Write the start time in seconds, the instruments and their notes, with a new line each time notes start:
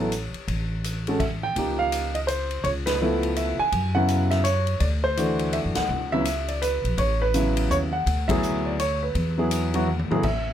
Already playing: upright bass A1, grand piano C#5
0.00 grand piano F#3 B3 E4 A4
0.12 hi-hat pedal, ride
0.34 muted upright bass stroke, ride
0.48 upright bass A1, kick, ride
0.84 hi-hat pedal, ride
1.07 grand piano G#3 C#4 F#4 A4, ride
1.20 grand piano E5, kick, crash, ride
1.43 grand piano G5
1.56 upright bass C#2, grand piano F3 A#3 D#4 G4, kick, ride
1.79 grand piano F5
1.92 hi-hat pedal, ride
2.15 grand piano D#5, ride
2.27 grand piano C5, hi-hat pedal, ride
2.51 ride
2.64 upright bass C#2, grand piano C#5, kick, ride
2.86 grand piano B4, snare, ride
3.01 grand piano F3 A3 B3 E4
3.23 ride
3.36 grand piano E5, hi-hat pedal, ride
3.59 grand piano G#5, muted upright bass stroke
3.72 upright bass F#2, kick, ride
3.95 grand piano C#3 F#3 B3 E4 F#5
4.08 hi-hat pedal, ride
4.31 grand piano E5, snare, ride
4.44 grand piano C#5, hi-hat pedal, ride
4.67 ride
4.80 upright bass D2, grand piano D5, kick, ride
5.04 grand piano C5
5.17 grand piano E3 A3 D4 F#4, hi-hat pedal, ride
5.39 ride
5.53 grand piano E5, ride
5.65 upright bass F#2
5.75 upright bass D2, grand piano F#5, snare, ride
5.89 upright bass C#2
6.12 grand piano C#3 F#3 B3 E4 E5
6.25 hi-hat pedal, ride
6.48 grand piano D5, ride
6.62 grand piano B4, hi-hat pedal, ride
6.84 upright bass A#1, ride
6.98 upright bass A1, grand piano C#5, kick, ride
7.22 grand piano B4
7.34 grand piano C#3 F#3 B3 E4, hi-hat pedal, ride
7.57 ride
7.70 upright bass D#2, grand piano C#5, hi-hat pedal
7.93 grand piano F#5
8.06 upright bass D2, kick, ride
8.28 grand piano F#3 B3 E4 G#4 E5, kick, ride
8.43 hi-hat pedal
8.66 grand piano D5
8.80 grand piano C#5, hi-hat pedal, ride
9.03 grand piano B4
9.15 upright bass E2, kick, ride
9.38 grand piano F#3 B3 E4 G#4
9.51 hi-hat pedal, ride
9.74 grand piano F#3 B3 E4 F#4, ride
9.87 high tom
9.99 high tom
10.10 grand piano A2 F#3 B3 E4 G#4, muted upright bass stroke, high tom
10.23 upright bass A1, grand piano E5, kick, crash